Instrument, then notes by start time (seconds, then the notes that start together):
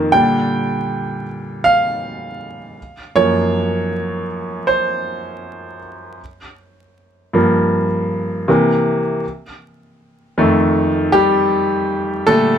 grand piano
Already playing: F2 D#3 A#3
0.12 A#2 D3 G3 G5
1.64 F5
3.16 F#2 F3 A#3 C#5
4.67 C5
7.33 G2 F3 A#3
8.48 C3 E3 A#3
10.38 F2 D#3 A3
11.12 G3 G4
12.27 A#2 D3 G3 A3 A4